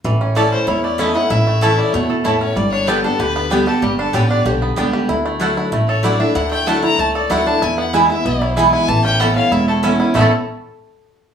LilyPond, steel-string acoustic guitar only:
\new Staff \with { instrumentName = "Steel-string acoustic guitar" } { \time 4/4 \key a \mixolydian \tempo 4 = 190 << { r4 <e a cis' e'>4 r4 <e a cis' e'>8 <cis' e'>8 | r4 <e a cis' e'>4 r2 | r4 <d g b g'>8 <b g'>8 r4 <d g b g'>8 <b g'>8 | r4 <d g b g'>4 r4 <d g b g'>4 |
r4 <fis a d' e'>4 r4 <fis a d' e'>8 <d' e'>8 | r4 <fis a d' e'>8 <d' e'>8 r4 <fis a d' e'>8 <d' e'>8 | r4 <e gis b e'>8 <b e'>8 r4 <e gis b e'>4 | r4 <e b cis' e'>4 r4 <e b cis' e'>4 |
<a, e b cis' e'>8 r2. r8 | } \\ { a,2 e,2 | a,2 b,4 a,4 | g,2 d2 | g,2 d2 |
d2 a,2 | d2 a,2 | e,2 b,2 | a,2 e,2 |
r1 | } >> }